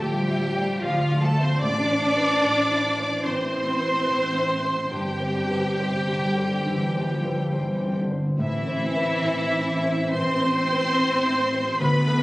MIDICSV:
0, 0, Header, 1, 11, 480
1, 0, Start_track
1, 0, Key_signature, 0, "minor"
1, 0, Tempo, 814111
1, 959, Time_signature, 4, 2, 24, 8
1, 2401, Tempo, 868307
1, 5761, Tempo, 821918
1, 6975, End_track
2, 0, Start_track
2, 0, Title_t, "Flute section"
2, 0, Program_c, 0, 73
2, 0, Note_on_c, 0, 79, 82
2, 478, Note_on_c, 0, 77, 73
2, 484, Note_off_c, 0, 79, 0
2, 715, Note_off_c, 0, 77, 0
2, 715, Note_on_c, 0, 81, 75
2, 832, Note_on_c, 0, 84, 79
2, 837, Note_off_c, 0, 81, 0
2, 951, Note_on_c, 0, 86, 101
2, 954, Note_off_c, 0, 84, 0
2, 1776, Note_off_c, 0, 86, 0
2, 1911, Note_on_c, 0, 84, 82
2, 2872, Note_off_c, 0, 84, 0
2, 2873, Note_on_c, 0, 79, 68
2, 4536, Note_off_c, 0, 79, 0
2, 4797, Note_on_c, 0, 76, 71
2, 5739, Note_off_c, 0, 76, 0
2, 5762, Note_on_c, 0, 84, 97
2, 6720, Note_on_c, 0, 83, 88
2, 6722, Note_off_c, 0, 84, 0
2, 6975, Note_off_c, 0, 83, 0
2, 6975, End_track
3, 0, Start_track
3, 0, Title_t, "Violin section"
3, 0, Program_c, 1, 48
3, 1, Note_on_c, 1, 79, 85
3, 487, Note_off_c, 1, 79, 0
3, 488, Note_on_c, 1, 77, 85
3, 720, Note_off_c, 1, 77, 0
3, 721, Note_on_c, 1, 81, 94
3, 838, Note_on_c, 1, 84, 86
3, 840, Note_off_c, 1, 81, 0
3, 953, Note_on_c, 1, 86, 113
3, 957, Note_off_c, 1, 84, 0
3, 1890, Note_off_c, 1, 86, 0
3, 1915, Note_on_c, 1, 84, 90
3, 2870, Note_on_c, 1, 79, 82
3, 2874, Note_off_c, 1, 84, 0
3, 4557, Note_off_c, 1, 79, 0
3, 4800, Note_on_c, 1, 76, 90
3, 5740, Note_off_c, 1, 76, 0
3, 5763, Note_on_c, 1, 84, 104
3, 6717, Note_on_c, 1, 83, 113
3, 6722, Note_off_c, 1, 84, 0
3, 6975, Note_off_c, 1, 83, 0
3, 6975, End_track
4, 0, Start_track
4, 0, Title_t, "Grand piano"
4, 0, Program_c, 2, 0
4, 0, Control_c, 2, 64, 127
4, 0, Note_on_c, 2, 38, 56
4, 0, Note_on_c, 2, 65, 50
4, 0, Note_on_c, 2, 74, 45
4, 0, Note_on_c, 2, 76, 51
4, 14, Note_on_c, 2, 45, 54
4, 103, Note_off_c, 2, 76, 0
4, 182, Note_on_c, 2, 76, 51
4, 268, Note_off_c, 2, 45, 0
4, 332, Note_off_c, 2, 74, 0
4, 332, Note_on_c, 2, 74, 43
4, 432, Note_off_c, 2, 76, 0
4, 490, Note_off_c, 2, 74, 0
4, 498, Note_on_c, 2, 77, 54
4, 657, Note_off_c, 2, 65, 0
4, 657, Note_on_c, 2, 65, 53
4, 746, Note_off_c, 2, 77, 0
4, 808, Note_on_c, 2, 76, 51
4, 902, Note_off_c, 2, 65, 0
4, 961, Note_off_c, 2, 76, 0
4, 963, Note_on_c, 2, 45, 72
4, 969, Control_c, 2, 64, 0
4, 974, Note_off_c, 2, 38, 0
4, 1061, Control_c, 2, 64, 127
4, 1123, Note_on_c, 2, 72, 53
4, 1275, Note_on_c, 2, 71, 52
4, 1371, Note_off_c, 2, 72, 0
4, 1432, Note_off_c, 2, 71, 0
4, 1435, Note_on_c, 2, 72, 56
4, 1602, Note_on_c, 2, 64, 55
4, 1689, Note_off_c, 2, 72, 0
4, 1760, Note_on_c, 2, 72, 58
4, 1853, Note_off_c, 2, 64, 0
4, 1891, Note_off_c, 2, 45, 0
4, 1908, Note_on_c, 2, 52, 57
4, 2014, Note_off_c, 2, 72, 0
4, 2073, Note_on_c, 2, 72, 50
4, 2169, Note_off_c, 2, 52, 0
4, 2237, Note_on_c, 2, 71, 43
4, 2335, Note_off_c, 2, 72, 0
4, 2396, Note_on_c, 2, 72, 52
4, 2401, Note_off_c, 2, 71, 0
4, 2553, Note_on_c, 2, 64, 43
4, 2648, Note_off_c, 2, 72, 0
4, 2717, Note_on_c, 2, 72, 45
4, 2808, Note_off_c, 2, 64, 0
4, 2866, Note_on_c, 2, 43, 53
4, 2875, Note_off_c, 2, 72, 0
4, 2883, Control_c, 2, 64, 0
4, 2989, Control_c, 2, 64, 127
4, 3025, Note_on_c, 2, 72, 47
4, 3185, Note_on_c, 2, 71, 39
4, 3285, Note_off_c, 2, 72, 0
4, 3349, Note_off_c, 2, 71, 0
4, 3355, Note_on_c, 2, 72, 49
4, 3506, Note_on_c, 2, 60, 41
4, 3611, Note_off_c, 2, 72, 0
4, 3674, Note_on_c, 2, 72, 44
4, 3768, Note_off_c, 2, 60, 0
4, 3811, Note_off_c, 2, 43, 0
4, 3828, Note_on_c, 2, 50, 45
4, 3934, Note_off_c, 2, 72, 0
4, 3993, Note_on_c, 2, 72, 43
4, 4091, Note_off_c, 2, 50, 0
4, 4153, Note_on_c, 2, 71, 36
4, 4253, Note_off_c, 2, 72, 0
4, 4312, Note_on_c, 2, 72, 44
4, 4315, Note_off_c, 2, 71, 0
4, 4476, Note_on_c, 2, 60, 43
4, 4571, Note_off_c, 2, 72, 0
4, 4632, Note_on_c, 2, 72, 42
4, 4733, Note_off_c, 2, 60, 0
4, 4785, Note_on_c, 2, 45, 56
4, 4794, Note_off_c, 2, 72, 0
4, 4808, Control_c, 2, 64, 0
4, 4912, Control_c, 2, 64, 127
4, 4944, Note_on_c, 2, 72, 48
4, 5103, Note_on_c, 2, 71, 42
4, 5200, Note_off_c, 2, 72, 0
4, 5263, Note_on_c, 2, 72, 48
4, 5264, Note_off_c, 2, 71, 0
4, 5413, Note_on_c, 2, 64, 50
4, 5527, Note_off_c, 2, 72, 0
4, 5590, Note_on_c, 2, 72, 52
4, 5688, Note_off_c, 2, 64, 0
4, 5732, Note_off_c, 2, 45, 0
4, 5750, Note_on_c, 2, 52, 52
4, 5859, Note_off_c, 2, 72, 0
4, 5921, Note_on_c, 2, 72, 53
4, 6020, Note_off_c, 2, 52, 0
4, 6086, Note_on_c, 2, 71, 45
4, 6181, Note_off_c, 2, 72, 0
4, 6246, Note_off_c, 2, 71, 0
4, 6247, Note_on_c, 2, 72, 52
4, 6408, Note_on_c, 2, 64, 48
4, 6499, Note_off_c, 2, 72, 0
4, 6566, Note_on_c, 2, 72, 51
4, 6659, Note_off_c, 2, 64, 0
4, 6723, Note_off_c, 2, 72, 0
4, 6725, Note_on_c, 2, 38, 70
4, 6730, Control_c, 2, 64, 0
4, 6832, Control_c, 2, 64, 127
4, 6883, Note_on_c, 2, 69, 61
4, 6975, Note_off_c, 2, 38, 0
4, 6975, Note_off_c, 2, 69, 0
4, 6975, End_track
5, 0, Start_track
5, 0, Title_t, "Viola section"
5, 0, Program_c, 3, 48
5, 0, Note_on_c, 3, 67, 78
5, 485, Note_on_c, 3, 65, 76
5, 486, Note_off_c, 3, 67, 0
5, 723, Note_off_c, 3, 65, 0
5, 723, Note_on_c, 3, 69, 79
5, 841, Note_off_c, 3, 69, 0
5, 844, Note_on_c, 3, 72, 80
5, 959, Note_on_c, 3, 74, 114
5, 960, Note_off_c, 3, 72, 0
5, 1893, Note_off_c, 3, 74, 0
5, 1909, Note_on_c, 3, 72, 81
5, 2872, Note_off_c, 3, 72, 0
5, 2873, Note_on_c, 3, 67, 72
5, 4558, Note_off_c, 3, 67, 0
5, 4799, Note_on_c, 3, 64, 78
5, 5740, Note_off_c, 3, 64, 0
5, 5764, Note_on_c, 3, 72, 92
5, 6723, Note_off_c, 3, 72, 0
5, 6724, Note_on_c, 3, 71, 96
5, 6975, Note_off_c, 3, 71, 0
5, 6975, End_track
6, 0, Start_track
6, 0, Title_t, "Violin section"
6, 0, Program_c, 4, 48
6, 1, Note_on_c, 4, 67, 76
6, 477, Note_on_c, 4, 65, 73
6, 487, Note_off_c, 4, 67, 0
6, 711, Note_on_c, 4, 69, 77
6, 720, Note_off_c, 4, 65, 0
6, 828, Note_on_c, 4, 72, 83
6, 835, Note_off_c, 4, 69, 0
6, 948, Note_on_c, 4, 74, 105
6, 952, Note_off_c, 4, 72, 0
6, 1887, Note_off_c, 4, 74, 0
6, 1911, Note_on_c, 4, 72, 81
6, 2872, Note_off_c, 4, 72, 0
6, 2883, Note_on_c, 4, 67, 72
6, 4563, Note_off_c, 4, 67, 0
6, 4794, Note_on_c, 4, 64, 76
6, 5737, Note_off_c, 4, 64, 0
6, 5770, Note_on_c, 4, 72, 91
6, 6726, Note_off_c, 4, 72, 0
6, 6728, Note_on_c, 4, 71, 97
6, 6975, Note_off_c, 4, 71, 0
6, 6975, End_track
7, 0, Start_track
7, 0, Title_t, "Harp"
7, 0, Program_c, 5, 46
7, 0, Note_on_c, 5, 50, 65
7, 0, Note_on_c, 5, 62, 47
7, 0, Note_on_c, 5, 65, 49
7, 0, Note_on_c, 5, 69, 42
7, 0, Note_on_c, 5, 74, 59
7, 0, Note_on_c, 5, 77, 55
7, 0, Note_on_c, 5, 81, 48
7, 6, Note_on_c, 5, 57, 56
7, 160, Note_off_c, 5, 62, 0
7, 167, Note_on_c, 5, 62, 51
7, 324, Note_off_c, 5, 65, 0
7, 331, Note_on_c, 5, 65, 58
7, 481, Note_off_c, 5, 74, 0
7, 488, Note_on_c, 5, 74, 60
7, 635, Note_off_c, 5, 77, 0
7, 642, Note_on_c, 5, 77, 55
7, 686, Note_off_c, 5, 69, 0
7, 798, Note_on_c, 5, 76, 56
7, 959, Note_on_c, 5, 45, 72
7, 975, Note_off_c, 5, 77, 0
7, 977, Note_off_c, 5, 50, 0
7, 978, Note_off_c, 5, 74, 0
7, 979, Note_off_c, 5, 62, 0
7, 980, Note_off_c, 5, 65, 0
7, 1005, Note_off_c, 5, 81, 0
7, 1121, Note_on_c, 5, 60, 55
7, 1279, Note_on_c, 5, 64, 51
7, 1437, Note_on_c, 5, 72, 61
7, 1592, Note_off_c, 5, 76, 0
7, 1599, Note_on_c, 5, 76, 55
7, 1751, Note_off_c, 5, 72, 0
7, 1758, Note_on_c, 5, 72, 50
7, 1918, Note_on_c, 5, 52, 57
7, 2072, Note_off_c, 5, 60, 0
7, 2079, Note_on_c, 5, 60, 52
7, 2233, Note_off_c, 5, 64, 0
7, 2241, Note_on_c, 5, 64, 51
7, 2305, Note_off_c, 5, 57, 0
7, 2397, Note_off_c, 5, 72, 0
7, 2404, Note_on_c, 5, 72, 57
7, 2551, Note_off_c, 5, 76, 0
7, 2558, Note_on_c, 5, 76, 49
7, 2707, Note_off_c, 5, 72, 0
7, 2714, Note_on_c, 5, 72, 51
7, 2871, Note_on_c, 5, 43, 60
7, 2893, Note_off_c, 5, 45, 0
7, 2893, Note_off_c, 5, 76, 0
7, 2894, Note_off_c, 5, 64, 0
7, 2895, Note_off_c, 5, 52, 0
7, 3028, Note_off_c, 5, 60, 0
7, 3034, Note_on_c, 5, 60, 42
7, 3192, Note_on_c, 5, 50, 47
7, 3348, Note_off_c, 5, 72, 0
7, 3354, Note_on_c, 5, 72, 50
7, 3503, Note_off_c, 5, 60, 0
7, 3509, Note_on_c, 5, 60, 48
7, 3665, Note_off_c, 5, 72, 0
7, 3671, Note_on_c, 5, 72, 39
7, 3829, Note_off_c, 5, 50, 0
7, 3835, Note_on_c, 5, 50, 47
7, 3984, Note_off_c, 5, 60, 0
7, 3991, Note_on_c, 5, 60, 45
7, 4143, Note_off_c, 5, 50, 0
7, 4150, Note_on_c, 5, 50, 41
7, 4304, Note_off_c, 5, 72, 0
7, 4311, Note_on_c, 5, 72, 51
7, 4465, Note_off_c, 5, 60, 0
7, 4471, Note_on_c, 5, 60, 44
7, 4624, Note_off_c, 5, 72, 0
7, 4630, Note_on_c, 5, 72, 45
7, 4790, Note_on_c, 5, 45, 66
7, 4811, Note_off_c, 5, 50, 0
7, 4815, Note_off_c, 5, 43, 0
7, 4946, Note_off_c, 5, 60, 0
7, 4953, Note_on_c, 5, 60, 45
7, 5256, Note_off_c, 5, 72, 0
7, 5263, Note_on_c, 5, 72, 55
7, 5596, Note_off_c, 5, 72, 0
7, 5603, Note_on_c, 5, 72, 44
7, 5770, Note_on_c, 5, 52, 54
7, 5926, Note_off_c, 5, 60, 0
7, 5933, Note_on_c, 5, 60, 55
7, 6250, Note_off_c, 5, 72, 0
7, 6572, Note_on_c, 5, 72, 58
7, 6725, Note_on_c, 5, 50, 78
7, 6737, Note_off_c, 5, 45, 0
7, 6743, Note_off_c, 5, 60, 0
7, 6745, Note_off_c, 5, 52, 0
7, 6745, Note_off_c, 5, 72, 0
7, 6886, Note_on_c, 5, 62, 55
7, 6975, Note_off_c, 5, 50, 0
7, 6975, Note_off_c, 5, 62, 0
7, 6975, End_track
8, 0, Start_track
8, 0, Title_t, "Cello section"
8, 0, Program_c, 6, 48
8, 3, Note_on_c, 6, 55, 78
8, 478, Note_off_c, 6, 55, 0
8, 488, Note_on_c, 6, 53, 74
8, 725, Note_off_c, 6, 53, 0
8, 731, Note_on_c, 6, 57, 76
8, 845, Note_off_c, 6, 57, 0
8, 849, Note_on_c, 6, 60, 87
8, 962, Note_off_c, 6, 60, 0
8, 962, Note_on_c, 6, 62, 109
8, 1911, Note_on_c, 6, 60, 84
8, 1914, Note_off_c, 6, 62, 0
8, 2871, Note_on_c, 6, 55, 62
8, 2873, Note_off_c, 6, 60, 0
8, 4535, Note_off_c, 6, 55, 0
8, 4799, Note_on_c, 6, 52, 77
8, 5739, Note_off_c, 6, 52, 0
8, 5763, Note_on_c, 6, 60, 94
8, 6722, Note_off_c, 6, 60, 0
8, 6724, Note_on_c, 6, 59, 93
8, 6975, Note_off_c, 6, 59, 0
8, 6975, End_track
9, 0, Start_track
9, 0, Title_t, "French horn section"
9, 0, Program_c, 7, 60
9, 0, Note_on_c, 7, 53, 67
9, 0, Note_on_c, 7, 65, 61
9, 931, Note_off_c, 7, 65, 0
9, 935, Note_off_c, 7, 53, 0
9, 956, Note_on_c, 7, 52, 77
9, 957, Note_on_c, 7, 64, 79
9, 2777, Note_off_c, 7, 52, 0
9, 2777, Note_off_c, 7, 64, 0
9, 2871, Note_on_c, 7, 50, 59
9, 2871, Note_on_c, 7, 60, 59
9, 3282, Note_off_c, 7, 50, 0
9, 3282, Note_off_c, 7, 60, 0
9, 3358, Note_on_c, 7, 48, 63
9, 3580, Note_off_c, 7, 48, 0
9, 3612, Note_on_c, 7, 50, 66
9, 3845, Note_on_c, 7, 52, 67
9, 3846, Note_off_c, 7, 50, 0
9, 4079, Note_off_c, 7, 52, 0
9, 4088, Note_on_c, 7, 53, 61
9, 4315, Note_on_c, 7, 52, 64
9, 4323, Note_off_c, 7, 53, 0
9, 4556, Note_off_c, 7, 52, 0
9, 4565, Note_on_c, 7, 50, 55
9, 4800, Note_on_c, 7, 60, 63
9, 4801, Note_off_c, 7, 50, 0
9, 4803, Note_on_c, 7, 52, 67
9, 6699, Note_off_c, 7, 60, 0
9, 6701, Note_off_c, 7, 52, 0
9, 6713, Note_on_c, 7, 62, 81
9, 6723, Note_on_c, 7, 53, 80
9, 6975, Note_off_c, 7, 53, 0
9, 6975, Note_off_c, 7, 62, 0
9, 6975, End_track
10, 0, Start_track
10, 0, Title_t, "Timpani"
10, 0, Program_c, 8, 47
10, 956, Note_on_c, 8, 45, 81
10, 1646, Note_off_c, 8, 45, 0
10, 6975, End_track
11, 0, Start_track
11, 0, Title_t, "Double bass section"
11, 0, Program_c, 10, 48
11, 0, Note_on_c, 10, 38, 74
11, 429, Note_off_c, 10, 38, 0
11, 491, Note_on_c, 10, 38, 80
11, 905, Note_off_c, 10, 38, 0
11, 961, Note_on_c, 10, 33, 82
11, 1376, Note_off_c, 10, 33, 0
11, 1435, Note_on_c, 10, 33, 69
11, 1857, Note_off_c, 10, 33, 0
11, 1913, Note_on_c, 10, 33, 76
11, 2343, Note_off_c, 10, 33, 0
11, 2402, Note_on_c, 10, 33, 67
11, 2817, Note_off_c, 10, 33, 0
11, 2873, Note_on_c, 10, 31, 64
11, 3296, Note_off_c, 10, 31, 0
11, 3351, Note_on_c, 10, 31, 60
11, 3778, Note_off_c, 10, 31, 0
11, 3829, Note_on_c, 10, 31, 62
11, 4259, Note_off_c, 10, 31, 0
11, 4316, Note_on_c, 10, 31, 62
11, 4740, Note_off_c, 10, 31, 0
11, 4800, Note_on_c, 10, 33, 69
11, 5214, Note_off_c, 10, 33, 0
11, 5270, Note_on_c, 10, 33, 68
11, 5704, Note_off_c, 10, 33, 0
11, 5764, Note_on_c, 10, 33, 75
11, 6194, Note_off_c, 10, 33, 0
11, 6253, Note_on_c, 10, 33, 73
11, 6668, Note_off_c, 10, 33, 0
11, 6724, Note_on_c, 10, 38, 81
11, 6975, Note_off_c, 10, 38, 0
11, 6975, End_track
0, 0, End_of_file